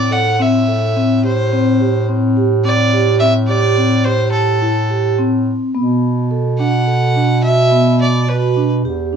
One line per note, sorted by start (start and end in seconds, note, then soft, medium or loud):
0.00 5.58 A2 medium
0.00 0.14 D5 medium
0.11 0.36 A4 medium
0.11 0.42 F#5 medium
0.40 0.65 C4 medium
0.40 1.25 E5 medium
0.68 0.93 A4 medium
0.96 1.21 C4 medium
1.24 1.49 G4 medium
1.24 2.05 C5 medium
1.53 1.77 C4 medium
1.81 2.06 G4 medium
2.09 2.34 C4 medium
2.37 2.62 G4 medium
2.65 2.90 C4 medium
2.65 3.17 D5 medium
2.93 3.18 G4 medium
3.20 3.46 C4 medium
3.20 3.33 E5 medium
3.49 3.74 G4 medium
3.49 4.06 D5 medium
3.77 4.02 C4 medium
4.04 4.56 G4 medium
4.04 4.31 C5 medium
4.32 5.13 A4 medium
4.62 4.87 E4 medium
4.90 5.15 G4 medium
5.18 5.68 C4 medium
5.75 8.81 B2 medium
5.75 6.25 B3 medium
6.31 6.56 A4 medium
6.59 6.84 D4 medium
6.59 7.40 F#5 medium
6.87 7.12 A4 medium
7.16 7.41 D4 medium
7.44 7.69 F#4 medium
7.44 7.96 E5 medium
7.72 8.22 B3 medium
8.01 8.30 D5 medium
8.28 8.53 F#4 medium
8.28 8.71 B4 medium
8.56 8.82 D4 medium
8.85 9.16 E2 medium
8.85 9.10 G4 medium
9.13 9.16 D4 medium